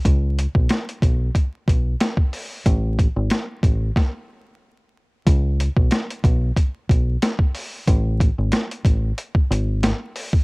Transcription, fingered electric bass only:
X:1
M:4/4
L:1/16
Q:"Swing 16ths" 1/4=92
K:Bmix
V:1 name="Fingered electric bass" clef=bass
C,,3 B,,, z2 B,,,2 z2 B,,,2 z4 | A,,,3 G,,, z2 A,,,2 z8 | C,,3 B,,, z2 B,,,2 z2 B,,,2 z4 | A,,,3 G,,, z2 A,,,2 z2 G,,,3 z3 |]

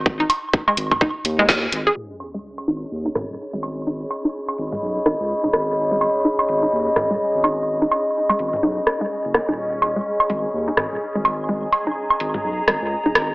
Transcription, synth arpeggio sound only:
X:1
M:4/4
L:1/16
Q:"Swing 16ths" 1/4=126
K:G#m
V:1 name="Synth arpeggio sound"
z D z3 G, z2 D z2 G, z3 G | z3 G, z2 D z2 D z3 G, z2 | D z2 D z3 G, z2 D z2 D z2 | z G, z2 D z2 D z3 G, z2 D z |
z D z3 G, z2 D z2 G, z2 B, D | z3 G, z2 G, z2 D z3 G, z2 | G, z2 D z3 G, z2 G, z2 D z2 |]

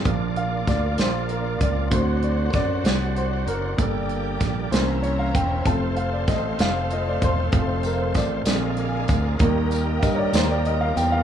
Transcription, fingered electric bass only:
X:1
M:6/8
L:1/8
Q:3/8=64
K:Bb
V:1 name="Fingered electric bass" clef=bass
B,,,2 D,, B,,,2 _D,, | D,,2 ^F,, C,,2 ^F,,, | G,,,2 B,,, C,,2 =E,,, | F,,,2 A,,, F,,,2 =E,,, |
F,,,2 A,,, B,,,2 D,, | E,,2 G,, E,,2 =E,, |]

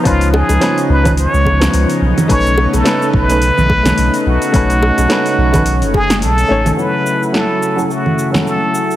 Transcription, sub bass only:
X:1
M:4/4
L:1/16
Q:"Swing 16ths" 1/4=107
K:F#dor
V:1 name="Sub bass" clef=bass
C,,3 C,, z2 C,,3 C,,3 C,, z B,,, z | B,,,3 B,,, z2 B,,,3 B,,,3 B,,, z B,,, z | B,,,3 B,,, z2 B,,,3 F,,,3 B,,, z A,,, z | z16 |]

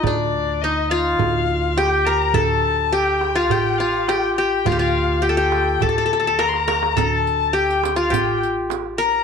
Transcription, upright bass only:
X:1
M:4/4
L:1/8
Q:1/4=104
K:none
V:1 name="Upright bass" clef=bass
D,,4 D,,4 | D,,4 A,,,4 | D,,4 D,,4 | D,,4 A,,,4 |]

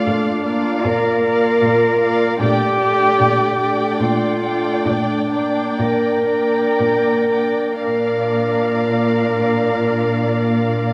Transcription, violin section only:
X:1
M:3/4
L:1/8
Q:1/4=68
K:Bb
V:1 name="Violin section"
[df] [df]2 [df]2 [df] | [dg] [dg]2 [dg]2 [dg]- | [dg] [dg]2 [dg]2 [dg] | [df]6 |]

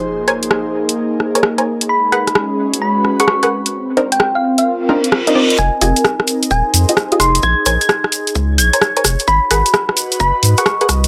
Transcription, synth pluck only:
X:1
M:4/4
L:1/16
Q:"Swing 16ths" 1/4=130
K:Fm
V:1 name="Synth pluck"
z16 | _c'2 c'2 z4 c'2 z d'3 z2 | z3 g g f2 f2 z4 e3 | a2 a2 z4 a2 z4 c'2 |
a'2 a' a' z6 a'6 | _c'2 c'2 z4 c'2 z d'3 z2 |]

